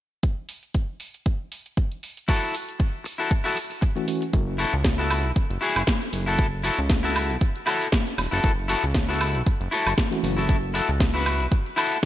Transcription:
0.23 kick, closed hi-hat
0.49 open hi-hat
0.63 closed hi-hat
0.74 kick, closed hi-hat
1.00 open hi-hat
1.14 closed hi-hat
1.26 kick, closed hi-hat
1.52 open hi-hat
1.66 closed hi-hat
1.77 kick, closed hi-hat
1.92 closed hi-hat
2.03 open hi-hat
2.17 closed hi-hat
2.28 E4 F#4 A4, kick, closed hi-hat
2.54 open hi-hat
2.69 closed hi-hat
2.79 muted clean electric guitar stroke, kick, closed hi-hat
3.04 muted clean electric guitar stroke, open hi-hat
3.18 E4 F#4 A4, closed hi-hat
3.31 kick, closed hi-hat
3.44 E4 F#4 A4
3.57 open hi-hat
3.70 muted clean electric guitar stroke, open hi-hat
3.81 muted clean electric guitar stroke, kick, closed hi-hat
3.96 E3 A3 C#4 F#4, muted clean electric guitar stroke, closed hi-hat
4.07 E3 A3 C#4 F#4, open hi-hat
4.21 muted clean electric guitar stroke, closed hi-hat
4.33 F#1, kick, closed hi-hat
4.58 E4 F#4 A4, open hi-hat
4.73 C#2, closed hi-hat
4.84 muted clean electric guitar stroke, kick, snare, closed hi-hat
4.98 E4 F#4 A4
5.10 open hi-hat, high woodblock
5.24 B1, closed hi-hat
5.36 F#1, kick, closed hi-hat
5.50 F#1, closed hi-hat
5.61 E4 F#4 G#4, open hi-hat
5.76 F#1, closed hi-hat, high woodblock
5.87 kick, snare, closed hi-hat
6.01 muted clean electric guitar stroke, closed hi-hat
6.13 F#1, open hi-hat
6.26 E4 F#4 A4, closed hi-hat
6.38 kick, closed hi-hat
6.64 E4 F#4 A4, open hi-hat
6.78 C#2, closed hi-hat
6.89 muted clean electric guitar stroke, kick, snare, closed hi-hat
7.03 E4 F#4 A4
7.16 open hi-hat, high woodblock
7.30 B1, closed hi-hat
7.41 kick, closed hi-hat
7.56 closed hi-hat
7.66 E4 F#4 A4, open hi-hat, high woodblock
7.81 open hi-hat
7.92 kick, snare, closed hi-hat
8.06 muted clean electric guitar stroke, closed hi-hat
8.18 E1, open hi-hat, high woodblock
8.31 F#1 E4 F#4 A4, closed hi-hat
8.44 F#1, kick, closed hi-hat
8.68 E4 F#4 A4, open hi-hat
8.84 C#2, closed hi-hat
8.94 muted clean electric guitar stroke, kick, snare, closed hi-hat
9.09 E4 F#4 A4
9.21 open hi-hat, high woodblock
9.35 B1, closed hi-hat
9.46 F#1, kick, closed hi-hat
9.61 F#1, closed hi-hat
9.71 E4 F#4 A4, open hi-hat
9.86 F#1, closed hi-hat, high woodblock
9.98 kick, snare, closed hi-hat
10.11 E3 A3 C#4 F#4, muted clean electric guitar stroke, closed hi-hat
10.23 F#1 E3 A3 C#4 F#4, open hi-hat
10.37 E4 F#4 A4, closed hi-hat
10.49 kick, closed hi-hat
10.74 E4 F#4 A4, open hi-hat
10.89 C#2, closed hi-hat
10.99 muted clean electric guitar stroke, kick, snare, closed hi-hat
11.14 E4 F#4 B4
11.26 open hi-hat, high woodblock
11.40 B1, closed hi-hat
11.52 kick, closed hi-hat
11.66 closed hi-hat
11.76 E4 F#4 A4, open hi-hat, high woodblock
11.92 open hi-hat

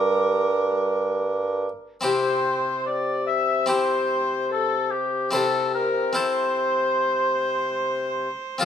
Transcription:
Already playing: G2 A#3 D4 G4 A#4 D6
2.01 C3 C4 E4 G4 C5
2.86 D5
3.26 E5
3.66 C4 E4 G4 C5
4.52 A4
4.91 G4
5.31 C3 C4 E4 A4 C5
5.74 A#4
6.13 C4 E4 A4 C5
8.58 F3 C4 F4 A4 F5

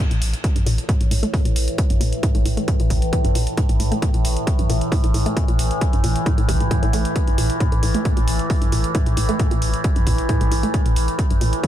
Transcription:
0.00 A2 E3
0.11 A1 A#2, closed hi-hat
0.22 A1, open hi-hat
0.34 closed hi-hat
0.44 kick, closed hi-hat
0.56 A1 G2, closed hi-hat
0.66 A1 A#2, open hi-hat
0.78 closed hi-hat
0.89 A2, kick, closed hi-hat
1.00 A1 A2, closed hi-hat
1.11 A1 A2, open hi-hat
1.23 A3, closed hi-hat
1.33 A2, kick, open hi-hat
1.45 A1 A#2, closed hi-hat
1.56 A1, open hi-hat
1.68 closed hi-hat
1.78 kick, closed hi-hat
1.90 A1 G2, closed hi-hat
2.01 A1 A#2, open hi-hat
2.12 closed hi-hat
2.23 A2, kick, closed hi-hat
2.35 A1 A2, closed hi-hat
2.45 A1 A2, open hi-hat
2.57 A3, closed hi-hat
2.68 A2, kick, closed hi-hat
2.80 A1 A#2, closed hi-hat
2.90 A1, kick, open hi-hat
3.02 closed hi-hat
3.13 kick, closed hi-hat
3.24 A1 G2, closed hi-hat
3.35 A1 A#2, open hi-hat
3.47 closed hi-hat
3.57 A2, kick, closed hi-hat
3.69 A1 A2, closed hi-hat
3.80 A1 A2, open hi-hat
3.92 A3, closed hi-hat
4.02 A2, kick, closed hi-hat
4.14 A1 A#2, closed hi-hat
4.25 A1, open hi-hat
4.37 closed hi-hat
4.47 kick, closed hi-hat
4.59 A1 G2, closed hi-hat
4.70 A1 A#2, open hi-hat
4.81 closed hi-hat
4.92 A2, kick, open hi-hat
5.04 A1 A2, closed hi-hat
5.14 A1 A2, open hi-hat
5.26 A3, closed hi-hat
5.37 A2, kick, closed hi-hat
5.48 A1 A#2, closed hi-hat
5.59 A1, open hi-hat
5.71 closed hi-hat
5.81 kick, closed hi-hat
5.93 A1 G2, closed hi-hat
6.04 A1 A#2, open hi-hat
6.16 closed hi-hat
6.26 A2, kick, closed hi-hat
6.38 A1 A2, closed hi-hat
6.49 A1 C3, kick, open hi-hat
6.60 A2, closed hi-hat
6.71 A2, kick, closed hi-hat
6.83 A1 A2, closed hi-hat
6.93 A1 A3, open hi-hat
7.05 closed hi-hat
7.16 kick, closed hi-hat
7.27 A1 G2, closed hi-hat
7.38 A1 A#2, open hi-hat
7.50 closed hi-hat
7.60 A2, kick, closed hi-hat
7.72 A1 A2, closed hi-hat
7.83 A1 A2, open hi-hat
7.94 A3, closed hi-hat
8.05 A2, kick, closed hi-hat
8.17 A1 A#2, closed hi-hat
8.28 A1, open hi-hat
8.39 closed hi-hat
8.50 kick, open hi-hat
8.62 A1 G2, closed hi-hat
8.72 A1 A#2, open hi-hat
8.84 closed hi-hat
8.95 A2, kick, closed hi-hat
9.06 A1 A2, closed hi-hat
9.17 A1 A2, open hi-hat
9.29 A3, closed hi-hat
9.39 A2, kick, closed hi-hat
9.51 A1 A#2, closed hi-hat
9.62 A1, open hi-hat
9.74 closed hi-hat
9.84 kick, closed hi-hat
9.96 A1 G2, closed hi-hat
10.07 A1 A#2, kick, open hi-hat
10.18 closed hi-hat
10.29 A2, kick, closed hi-hat
10.41 A1 A2, closed hi-hat
10.52 A1 A2, open hi-hat
10.63 A3, closed hi-hat
10.74 A2, kick, closed hi-hat
10.86 A1 A#2, closed hi-hat
10.96 A1, open hi-hat
11.08 closed hi-hat
11.19 kick, closed hi-hat
11.30 A1 G2, closed hi-hat
11.41 A1 A#2, open hi-hat
11.53 closed hi-hat
11.63 A2, kick, closed hi-hat

